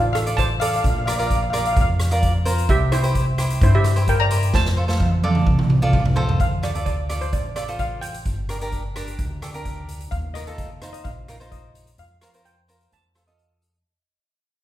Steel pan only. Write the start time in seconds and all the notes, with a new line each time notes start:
Already playing: F4 D5
0.13 A4 F5
0.37 C5 A5
0.60 A4 F5
0.68 F5
0.76 F5
0.82 F5
0.90 F5
0.98 F5
1.06 F5
1.12 F5
1.20 F5
1.27 F5
1.35 F5
1.42 F5
1.50 F5
1.58 F5
1.67 F5
1.73 F5
1.81 F5
2.70 G4 E5
2.92 E4 C5
3.63 E4 C5
3.75 G4 E5
4.09 A#4 G5
4.20 D5 A#5
4.55 C5 A5
6.41 F5
6.64 D5
6.86 D5
7.21 C5
7.33 D5
7.57 D5
7.80 F5
8.01 G5
10.11 F5
10.34 D#5
10.93 D#5
11.04 F5
11.52 D#5
11.99 F5
12.45 G5
12.93 A5